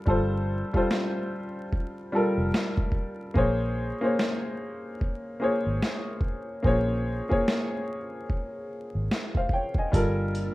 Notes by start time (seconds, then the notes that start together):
Already playing: G3 F4 A4 A#4
0.06 G1 G3 F4 A4, kick
0.10 C5
0.73 G3 F4 A4 C5, kick
0.91 snare
1.73 kick
2.12 G3 F4 A4 A#4
2.38 F1
2.54 snare
2.77 kick
2.92 kick
3.34 A#1 A#3 G#4 C5 C#5, kick
4.01 A#3 G#4 C5 C#5
4.19 snare
5.01 kick
5.40 A#3 G#4 C5 C#5
5.67 G#1
5.83 snare
6.21 kick
6.63 A#1 A#3 G#4 C5, kick
6.67 C#5
7.29 A#3 G#4 C5 C#5, kick
7.48 snare
8.30 kick
8.95 G#1
9.11 snare
9.35 C5 F5, kick
9.49 G5, kick
9.54 C#5
9.75 G#5, kick
9.79 D#5
9.92 G1 G3 A#3 D4 F4 A4 A#4 A5, kick, closed hi-hat
10.35 closed hi-hat